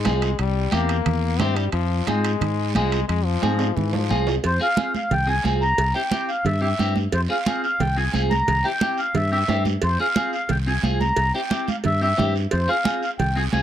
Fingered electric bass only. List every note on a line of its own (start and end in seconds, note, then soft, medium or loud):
0.07 0.33 C2 medium
0.39 0.66 C2 loud
0.73 1.00 E2 medium
1.06 1.40 E2 medium
1.40 1.67 G2 loud
1.73 2.00 F2 loud
2.07 2.34 G#2 medium
2.41 2.77 G#2 medium
2.75 3.02 C2 medium
3.09 3.36 F2 loud
3.43 3.70 G#2 medium
3.77 4.12 G#2 medium
4.11 4.38 C2 medium
4.45 4.58 F2 medium
5.11 5.38 C2 medium
5.45 5.72 C2 medium
5.78 5.92 C2 loud
6.45 6.72 G2 medium
6.79 7.06 G2 medium
7.13 7.26 F2 loud
7.80 8.07 C2 medium
8.14 8.41 C2 medium
8.48 8.62 C2 loud
9.15 9.42 G2 medium
9.49 9.76 G2 medium
9.83 9.96 F2 medium
10.50 10.77 C2 medium
10.83 11.10 C2 medium
11.17 11.31 C2 loud
11.85 12.12 G2 medium
12.19 12.46 G2 medium
12.53 12.66 F2 loud
13.20 13.47 C2 medium
13.53 13.62 C2 medium